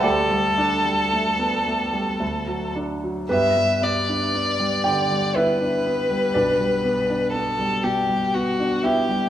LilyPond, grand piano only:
<<
  \new Staff \with { instrumentName = "Grand piano" } { \time 3/4 \key g \major \tempo 4 = 59 <g' a' d''>2 r4 | <b g' b'>4. <g' g''>8 <e' b' e''>4 | <d' b' d''>2~ <d' b' d''>8 <e' e''>8 | }
  \new Staff \with { instrumentName = "Grand piano" } { \clef bass \time 3/4 \key g \major d,16 g16 d'16 g16 a16 b16 a16 g16 d,16 fis16 d'16 fis16 | g,16 g16 b16 d'16 b16 g16 d16 g16 b16 d'16 b16 g16 | b,,16 g16 b16 d'16 b16 g16 b,16 g16 b16 d'16 b16 g16 | }
>>